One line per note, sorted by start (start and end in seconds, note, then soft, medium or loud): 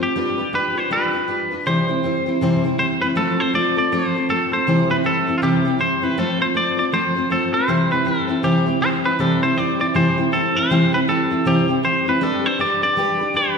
0.01 0.16 C4 soft
0.01 0.16 F4 soft
0.01 0.55 G4 medium
0.01 0.16 C5 soft
0.16 0.39 G3 medium
0.16 0.39 D4 medium
0.16 0.38 F4 medium
0.16 0.36 B4 medium
0.38 0.53 D4 soft
0.38 0.54 F4 soft
0.38 0.53 B4 medium
0.53 0.76 G3 medium
0.53 0.77 D4 medium
0.53 0.76 F4 medium
0.53 0.78 B4 medium
0.53 0.74 B4 medium
0.75 0.90 D4 soft
0.75 0.91 F4 soft
0.75 0.91 B4 medium
0.75 0.92 C5 medium
0.90 1.14 G3 medium
0.90 1.14 D4 medium
0.90 1.13 F4 medium
0.90 1.12 B4 medium
0.90 1.63 B4 medium
1.13 1.27 D4 soft
1.13 1.28 F4 soft
1.13 1.28 B4 medium
1.28 1.51 G3 medium
1.28 1.51 D4 medium
1.28 1.51 F4 medium
1.28 1.50 B4 medium
1.51 1.67 D4 soft
1.51 1.67 F4 soft
1.51 1.66 B4 medium
1.66 1.89 C3 medium
1.66 1.89 E3 medium
1.66 1.89 G3 medium
1.66 1.89 C4 medium
1.66 1.88 E4 medium
1.66 2.75 C5 medium
1.66 1.87 C5 medium
1.88 2.02 G3 soft
1.88 2.03 C4 soft
1.88 2.04 E4 soft
1.88 2.04 C5 soft
2.03 2.26 G3 medium
2.03 2.27 C4 medium
2.03 2.26 E4 medium
2.03 2.25 C5 medium
2.26 2.41 G3 soft
2.26 2.42 C4 soft
2.26 2.42 E4 soft
2.26 2.41 C5 medium
2.41 2.64 C3 medium
2.41 2.65 E3 medium
2.41 2.65 G3 medium
2.41 2.65 C4 medium
2.41 2.63 E4 medium
2.41 2.63 C5 medium
2.64 2.77 G3 soft
2.64 2.79 C4 medium
2.64 2.79 E4 medium
2.64 2.79 C5 medium
2.79 3.02 G3 medium
2.79 3.02 C4 medium
2.79 3.01 E4 medium
2.79 2.85 C5 medium
2.79 3.00 C5 medium
3.01 3.16 G3 soft
3.01 3.15 C4 soft
3.01 3.17 E4 soft
3.01 3.07 B4 medium
3.01 3.16 C5 medium
3.15 3.39 F3 medium
3.15 3.39 A3 medium
3.15 3.39 C4 medium
3.15 3.39 F4 medium
3.15 3.40 A4 medium
3.15 3.38 A4 medium
3.39 3.54 C4 soft
3.39 3.55 F4 soft
3.39 3.54 A4 medium
3.39 3.55 C5 medium
3.54 3.77 A3 medium
3.54 3.77 C4 medium
3.54 3.77 F4 medium
3.54 3.75 A4 medium
3.54 3.77 D5 medium
3.76 3.92 C4 soft
3.76 3.93 F4 soft
3.76 3.92 A4 medium
3.76 3.93 D5 medium
3.92 4.15 F3 medium
3.92 4.15 A3 medium
3.92 4.15 C4 medium
3.92 4.16 F4 medium
3.92 4.14 A4 medium
3.92 4.30 C5 medium
4.15 4.29 C4 soft
4.15 4.30 F4 soft
4.15 4.30 A4 soft
4.29 4.52 A3 medium
4.29 4.53 C4 medium
4.29 4.52 F4 medium
4.29 4.53 A4 medium
4.29 4.51 A4 medium
4.52 4.67 C4 soft
4.52 4.68 F4 soft
4.52 4.67 A4 soft
4.52 4.91 C5 medium
4.67 4.90 C3 medium
4.67 4.90 E3 medium
4.67 4.90 G3 medium
4.67 4.91 C4 medium
4.67 4.90 E4 medium
4.67 4.88 C5 medium
4.90 5.03 G3 soft
4.90 5.03 C4 soft
4.90 5.05 E4 soft
4.90 4.96 B4 medium
4.90 5.05 C5 medium
5.04 5.27 G3 medium
5.04 5.27 C4 medium
5.04 5.27 E4 medium
5.04 5.35 A4 medium
5.04 5.26 C5 medium
5.27 5.42 G3 soft
5.27 5.42 C4 soft
5.27 5.42 E4 medium
5.27 5.42 C5 soft
5.38 5.43 F4 medium
5.42 5.65 C3 medium
5.42 5.65 E3 medium
5.42 5.65 G3 medium
5.42 5.65 C4 medium
5.42 5.65 E4 medium
5.42 5.78 G4 medium
5.42 5.64 C5 medium
5.65 5.78 G3 soft
5.65 5.79 C4 soft
5.65 5.80 E4 soft
5.65 5.80 C5 medium
5.79 6.02 G3 medium
5.79 6.03 C4 medium
5.79 6.02 E4 medium
5.79 6.03 C5 medium
5.79 6.01 C5 medium
6.02 6.17 G3 soft
6.02 6.17 C4 soft
6.02 6.18 E4 soft
6.02 6.19 B4 medium
6.02 6.17 C5 soft
6.18 6.40 F3 medium
6.18 6.41 A3 medium
6.18 6.41 C4 medium
6.18 6.40 F4 medium
6.18 6.41 A4 medium
6.18 6.38 C5 medium
6.40 6.54 C4 soft
6.40 6.55 F4 soft
6.40 6.55 C5 soft
6.40 6.47 C5 medium
6.54 6.78 A3 medium
6.54 6.78 C4 medium
6.54 6.78 F4 medium
6.54 6.76 C5 medium
6.54 6.78 D5 medium
6.77 6.93 C4 soft
6.77 6.93 F4 soft
6.77 6.92 C5 medium
6.77 6.84 D5 medium
6.92 7.15 F3 medium
6.92 7.16 A3 medium
6.92 7.16 C4 medium
6.92 7.16 F4 medium
6.92 7.32 C5 medium
6.92 7.14 C5 medium
7.15 7.30 C4 soft
7.15 7.31 F4 soft
7.15 7.30 C5 soft
7.30 7.53 A3 medium
7.30 7.54 C4 medium
7.30 7.54 F4 medium
7.30 7.53 A4 medium
7.30 7.52 C5 medium
7.53 7.68 C4 soft
7.53 7.69 F4 soft
7.53 7.68 C5 soft
7.53 7.91 C5 loud
7.68 7.91 C3 medium
7.68 7.91 E3 medium
7.68 7.91 G3 medium
7.68 7.92 C4 medium
7.68 7.91 E4 medium
7.68 7.90 C5 medium
7.91 8.04 G3 soft
7.91 8.05 C4 soft
7.91 8.06 E4 soft
7.91 8.07 B4 medium
7.91 8.06 C5 medium
8.05 8.28 G3 medium
8.05 8.29 C4 medium
8.05 8.28 E4 medium
8.05 8.45 A4 medium
8.05 8.27 C5 medium
8.28 8.43 G3 soft
8.28 8.43 C4 medium
8.28 8.43 E4 medium
8.28 8.43 C5 soft
8.43 8.66 C3 medium
8.43 8.66 E3 medium
8.43 8.67 G3 medium
8.43 8.67 C4 medium
8.43 8.66 E4 medium
8.43 8.79 G4 medium
8.43 8.65 C5 medium
8.66 8.79 G3 soft
8.66 8.81 C4 soft
8.66 8.82 E4 soft
8.66 8.81 C5 medium
8.81 9.04 G3 medium
8.81 9.05 C4 medium
8.81 9.04 E4 medium
8.81 8.88 C5 medium
8.81 9.03 C5 medium
9.04 9.19 G3 soft
9.04 9.19 C4 soft
9.04 9.20 E4 soft
9.04 9.20 B4 medium
9.04 9.19 C5 soft
9.19 9.42 C3 medium
9.19 9.42 E3 medium
9.19 9.42 G3 medium
9.19 9.43 C4 medium
9.19 9.42 E4 medium
9.19 9.43 A4 medium
9.19 9.41 C5 medium
9.42 9.55 G3 soft
9.42 9.57 C4 soft
9.42 9.57 E4 soft
9.42 9.57 C5 medium
9.42 9.58 C5 medium
9.56 9.80 G3 medium
9.56 9.80 C4 medium
9.56 9.80 E4 medium
9.56 9.78 C5 medium
9.56 9.80 D5 medium
9.79 9.94 G3 soft
9.79 9.95 C4 soft
9.79 9.95 E4 medium
9.79 9.95 C5 soft
9.79 9.86 D5 medium
9.94 10.17 C3 medium
9.94 10.18 E3 medium
9.94 10.18 G3 medium
9.94 10.18 C4 medium
9.94 10.17 E4 medium
9.94 10.33 C5 medium
9.94 10.16 C5 medium
10.17 10.31 G3 soft
10.17 10.33 C4 soft
10.17 10.33 E4 medium
10.17 10.32 C5 medium
10.32 10.55 G3 medium
10.32 10.56 C4 medium
10.32 10.55 E4 medium
10.32 10.56 A4 medium
10.32 10.54 C5 medium
10.55 10.70 G3 soft
10.55 10.70 C4 soft
10.55 10.71 E4 soft
10.55 10.70 C5 medium
10.55 10.94 C5 medium
10.70 10.93 C3 medium
10.70 10.93 E3 medium
10.70 10.94 G3 medium
10.70 10.94 C4 medium
10.70 10.93 E4 medium
10.70 10.92 C5 medium
10.93 11.06 G3 soft
10.93 11.08 C4 soft
10.93 11.09 E4 soft
10.93 10.99 B4 medium
10.93 11.08 C5 medium
11.08 11.31 G3 medium
11.08 11.31 C4 medium
11.08 11.30 E4 medium
11.08 11.47 A4 medium
11.08 11.29 C5 medium
11.30 11.45 G3 soft
11.30 11.46 C4 soft
11.30 11.46 E4 soft
11.30 11.46 C5 medium
11.45 11.68 C3 medium
11.45 11.69 E3 medium
11.45 11.69 G3 medium
11.45 11.69 C4 medium
11.45 11.68 E4 medium
11.45 11.82 G4 medium
11.45 11.67 C5 medium
11.68 11.82 G3 soft
11.68 11.83 C4 medium
11.68 11.84 E4 medium
11.68 11.83 C5 medium
11.83 12.06 G3 medium
11.83 12.07 C4 medium
11.83 12.06 E4 medium
11.83 12.06 C5 medium
11.83 12.05 C5 medium
12.06 12.20 G3 soft
12.06 12.21 C4 soft
12.06 12.22 E4 soft
12.06 12.23 B4 medium
12.06 12.21 C5 soft
12.21 12.44 G3 medium
12.21 12.45 D4 medium
12.21 12.44 G4 medium
12.21 12.46 A4 medium
12.21 12.43 B4 medium
12.44 12.59 D4 soft
12.44 12.60 G4 soft
12.44 12.59 B4 medium
12.44 12.61 C5 medium
12.59 12.82 G3 medium
12.59 12.83 D4 medium
12.59 12.83 G4 medium
12.59 12.81 B4 medium
12.59 12.82 D5 medium
12.82 12.96 D4 soft
12.82 12.97 G4 medium
12.82 12.97 B4 medium
12.82 13.36 D5 loud
12.97 13.20 G3 medium
12.97 13.20 D4 medium
12.97 13.20 G4 medium
12.97 13.18 B4 medium
13.19 13.34 D4 soft
13.19 13.35 G4 medium
13.19 13.35 B4 medium
13.34 13.57 G3 medium
13.34 13.58 D4 medium
13.34 13.57 G4 medium
13.34 13.58 B4 medium
13.34 13.55 B4 medium